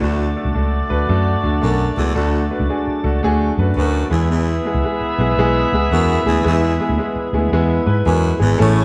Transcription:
0.00 fingered electric bass D2, baritone saxophone D2, tonewheel organ F#3 D4 A4, grand piano A3 D4 F#4 A4, horn section A3 F#4 D5
0.36 grand piano A3 D4 F#4 A4
0.45 fingered electric bass C#2
0.54 fingered electric bass C#2, grand piano A3 D4 F#4 A4
0.89 fingered electric bass D2, grand piano A3 D4 F#4 B4
1.08 fingered electric bass F#2, grand piano A3 D4 F#4 A4
1.43 fingered electric bass D2, grand piano A3 D4 F#4 A4
1.61 fingered electric bass B1, baritone saxophone F#2, grand piano A3 D4 F#4 A4
1.97 fingered electric bass C#2, baritone saxophone E2, grand piano A3 D4 F#4 A4
2.14 baritone saxophone D2, fingered electric bass D2, grand piano A3 D4 F#4 A4
2.50 grand piano A3 D4 F#4 B4
2.60 fingered electric bass C#2
2.69 grand piano A3 D4 F#4 G#4
2.87 muted fingered electric bass stroke
3.03 fingered electric bass C#2, grand piano A3 D4 F#4 A4
3.23 fingered electric bass D2, grand piano A3 D4 F#4 G#4
3.58 fingered electric bass F#2, grand piano A3 D4 F#4 B4
3.76 fingered electric bass D2, baritone saxophone F#2, grand piano A3 D4 F#4 B4
4.10 fingered electric bass E2, baritone saxophone E2, tonewheel organ E3 B3 G#4, grand piano G#3 B3 E4 G#4, horn section B3 G#4 E5
4.31 baritone saxophone E2
4.65 grand piano G#3 B3 E4 G#4
4.74 fingered electric bass C#2
4.84 grand piano G#3 B3 E4 G#4
5.01 muted fingered electric bass stroke
5.18 fingered electric bass B1, grand piano G#3 B3 E4 G#4
5.38 fingered electric bass B1, grand piano G#3 B3 E4 G#4
5.72 fingered electric bass C#2, grand piano G#3 B3 E4 G#4
5.91 fingered electric bass E2, baritone saxophone F#2, grand piano G#3 B3 E4 G#4
6.25 fingered electric bass D2, baritone saxophone E2, grand piano G#3 B3 E4 G#4
6.44 fingered electric bass E2, baritone saxophone E2, grand piano G#3 B3 E4 G#4
6.80 grand piano G#3 B3 E4 G#4
6.89 fingered electric bass D2
6.98 grand piano G#3 B3 E4 G#4
7.16 muted fingered electric bass stroke
7.33 fingered electric bass D2, grand piano G#3 B3 E4 G#4
7.52 fingered electric bass E2, grand piano G#3 B3 E4 G#4
7.86 fingered electric bass G#2, grand piano G#3 B3 E4 B4
8.06 fingered electric bass E2, baritone saxophone F#2, grand piano G#3 B3 E4 G#4
8.39 fingered electric bass G#1, baritone saxophone E2, grand piano G#3 B3 E4 G#4
8.58 fingered electric bass A1, baritone saxophone A2, grand piano A3 C#4 E4 G#4 A4, tonewheel organ C#4 G#4 A4

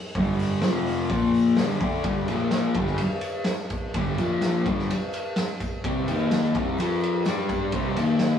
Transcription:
0.15 distorted electric guitar G2 D3, kick, open hi-hat, tambourine
0.19 distorted electric guitar G3
0.39 open hi-hat, tambourine
0.62 distorted electric guitar F2 C3 F3, snare, open hi-hat, tambourine
0.86 open hi-hat, tambourine
1.09 distorted electric guitar A#2 F3 A#3, kick, open hi-hat, tambourine
1.34 open hi-hat, tambourine
1.57 distorted electric guitar G2 D3 G3, snare, open hi-hat, tambourine
1.81 distorted electric guitar D3 A3 D4, kick, open hi-hat
2.04 distorted electric guitar G2 D3 G3, kick, ride
2.28 distorted electric guitar A#2 F3 A#3, ride, tambourine
2.51 snare, ride, tambourine
2.74 distorted electric guitar G2 D3, kick, ride, tambourine
2.79 distorted electric guitar G3
2.86 snare
2.98 ride, tambourine
3.21 ride, tambourine
3.44 snare, ride
3.48 tambourine
3.70 kick, ride, tambourine
3.94 distorted electric guitar G2 D3 G3, kick, ride
4.18 distorted electric guitar A#2 F3 A#3, ride, tambourine
4.41 snare, ride, tambourine
4.66 distorted electric guitar G2 D3 G3, kick, ride, tambourine
4.79 snare
4.90 ride, tambourine
5.13 ride, tambourine
5.36 snare, ride, tambourine
5.60 kick, ride, tambourine
5.84 distorted electric guitar C3 G3 C4, kick, ride
6.08 distorted electric guitar D#3 A#3 D#4, ride, tambourine
6.31 snare, ride, tambourine
6.55 distorted electric guitar C3 G3 C4, kick, ride, tambourine
6.78 distorted electric guitar F3 C4 F4, ride, tambourine
7.01 ride, tambourine
7.25 distorted electric guitar G3 D4 G4, snare, ride, tambourine
7.49 kick, ride, tambourine
7.72 distorted electric guitar C3 G3 C4, kick, ride, tambourine
7.96 distorted electric guitar D#3 A#3 D#4, ride, tambourine
8.19 snare, ride, tambourine

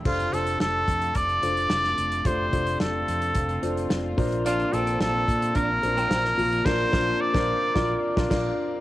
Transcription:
0.05 fretless electric bass F1, string section C3 A3 D4 F4, grand piano C3 D4 F4 A4 C5, trumpet F4, kick, crash
0.19 closed hi-hat
0.32 fretless electric bass F1, grand piano D4 F4 A4 C5, trumpet A4, closed hi-hat
0.47 closed hi-hat
0.60 fretless electric bass F1, trumpet A4, snare
0.88 fretless electric bass F2, kick, closed hi-hat
1.02 closed hi-hat
1.15 fretless electric bass F1, trumpet D5, kick, closed hi-hat
1.29 closed hi-hat
1.43 fretless electric bass F1, grand piano D4 F4 A4 C5, closed hi-hat
1.57 closed hi-hat
1.70 fretless electric bass F1, snare
1.84 snare
1.98 fretless electric bass F1, closed hi-hat
2.12 closed hi-hat
2.25 fretless electric bass F1, grand piano C3 D4 F4 A4 C5, string section C4, trumpet C5, kick, closed hi-hat
2.52 fretless electric bass F1, grand piano D4 F4 A4 C5, kick, closed hi-hat
2.67 closed hi-hat
2.80 fretless electric bass F1, trumpet A4, snare
3.08 fretless electric bass F2, closed hi-hat
3.22 closed hi-hat
3.35 fretless electric bass F1, kick, closed hi-hat
3.49 closed hi-hat
3.62 fretless electric bass F1, grand piano D4 F4 A4 C5, closed hi-hat
3.77 closed hi-hat
3.90 fretless electric bass F1, snare
4.17 fretless electric bass A#1, grand piano A#2 F3 D4 F4 A#4 C5, string section A#3 D4, kick, open hi-hat
4.32 closed hi-hat
4.46 clean electric guitar D4, trumpet F4, closed hi-hat
4.59 closed hi-hat
4.72 fretless electric bass A#1, grand piano A#3 D4 F4 D5, clean electric guitar C4, trumpet A4, closed hi-hat
4.87 closed hi-hat
5.00 fretless electric bass A#1, trumpet A4, snare
5.28 fretless electric bass A#2, kick, closed hi-hat
5.42 closed hi-hat
5.55 fretless electric bass A#1, clean electric guitar D4, trumpet A#4, kick, closed hi-hat
5.83 fretless electric bass A#1, grand piano D4 F4 A#4 C5, closed hi-hat
5.97 clean electric guitar C4, closed hi-hat
6.11 fretless electric bass A#1, snare
6.25 snare
6.38 fretless electric bass A#1, grand piano A#2 F3, open hi-hat
6.53 closed hi-hat
6.65 fretless electric bass A#1, grand piano D4 F4 A#4 C5, trumpet C5, kick, snare, crash
6.92 fretless electric bass A#1, grand piano D4 F4 A#4 C5, kick, snare
7.21 trumpet D5
7.33 fretless electric bass A#1, grand piano D4 F4 A#4 C5, kick, snare
7.75 fretless electric bass A#1, grand piano D4 F4 A#4 D5, kick, snare
8.17 fretless electric bass A#1, grand piano D4 F4 A#4 D5, kick, snare
8.30 fretless electric bass A#1, grand piano D4 F4 A#4 D5, kick, snare, crash

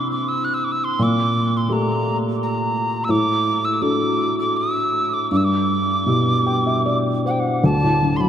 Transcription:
Already playing: felt piano C3 C4 D4 E4
0.11 tin whistle D6
0.28 tin whistle E6
0.45 tin whistle F#6
0.54 tin whistle E6
0.64 tin whistle D6
0.72 tin whistle E6
0.84 tin whistle C6
0.99 felt piano A#2, tin whistle D6
1.57 tin whistle C6
1.68 felt piano A3 A#3 G4
1.73 tin whistle A#5
2.43 tin whistle A#5
3.04 tin whistle E6
3.09 felt piano A2, tin whistle D6
3.65 tin whistle E6
3.74 tin whistle E6
3.81 felt piano D4 F#4 A4, tin whistle D6
4.39 tin whistle D6
4.57 tin whistle E6
5.14 tin whistle D6
5.31 felt piano G2, tin whistle D6
5.37 tin whistle E6
5.45 tin whistle D6
6.06 felt piano B2 E4 G4
6.46 felt piano G5
6.67 felt piano E5
6.86 felt piano D5
7.25 felt piano C5, tin whistle F#5
7.31 tin whistle G5
7.40 tin whistle F#5
7.64 felt piano D2, tin whistle A5
7.83 felt piano A2
8.02 felt piano D3
8.17 felt piano F#3, tin whistle C6
8.21 tin whistle B5

